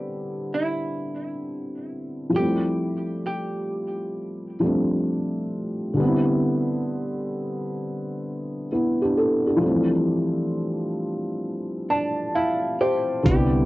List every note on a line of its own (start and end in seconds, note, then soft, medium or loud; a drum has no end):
0.00 2.28 D3 medium
0.00 2.29 G3 medium
0.00 2.31 B3 medium
0.00 2.32 C4 medium
0.00 2.36 D4 medium
0.00 2.34 E4 medium
0.00 0.59 G4 medium
0.00 2.36 G4 medium
0.54 2.41 E4 medium
2.29 4.55 F3 medium
2.29 4.57 G3 medium
2.36 4.58 A3 soft
2.36 4.60 C4 medium
2.36 3.22 G4 medium
2.42 4.61 E4 medium
3.26 5.49 G4 medium
4.60 5.97 F3 medium
4.60 5.95 G3 soft
4.60 5.99 A3 soft
4.64 5.99 C4 medium
4.64 6.00 D4 medium
5.94 9.55 D3 medium
5.94 9.57 G3 medium
6.00 8.68 B3 medium
6.00 8.69 C4 medium
6.06 8.70 E4 medium
8.72 9.00 B3 soft
8.72 8.99 E4 medium
9.01 9.16 D4 medium
9.01 9.16 G4 medium
9.17 9.45 E4 medium
9.17 9.45 A4 medium
9.47 9.90 D4 medium
9.47 9.89 G4 medium
9.57 13.19 F3 medium
9.57 13.20 G3 medium
9.63 13.22 A3 medium
9.63 13.23 C4 medium
9.69 13.25 E3 medium
11.90 12.35 D4 medium
11.90 12.32 A5 medium
12.35 12.82 E4 medium
12.35 12.77 F5 medium
12.81 13.23 G4 medium
12.81 13.23 C5 medium
13.23 13.65 C2 loud
13.23 13.65 D3 medium
13.23 13.65 G3 medium
13.23 13.65 B3 medium
13.23 13.65 G4 loud
13.23 kick loud
13.23 closed hi-hat medium
13.28 13.65 C4 medium
13.28 13.65 E4 medium